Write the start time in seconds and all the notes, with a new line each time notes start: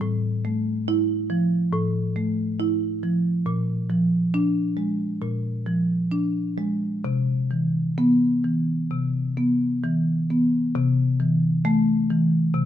0.01 A2
0.45 A3
0.88 E4
1.30 F3
1.73 A2
2.16 A3
2.60 E4
3.03 F3
3.46 A#2
3.90 F3
4.34 D4
4.77 G#3
5.21 A#2
5.66 F3
6.12 D4
6.58 G#3
7.04 C3
7.51 E3
7.98 B3
8.44 E3
8.91 C3
9.37 B3
9.84 E3
10.30 B3
10.75 C3
11.20 E3
11.65 A3
12.10 E3
12.54 C3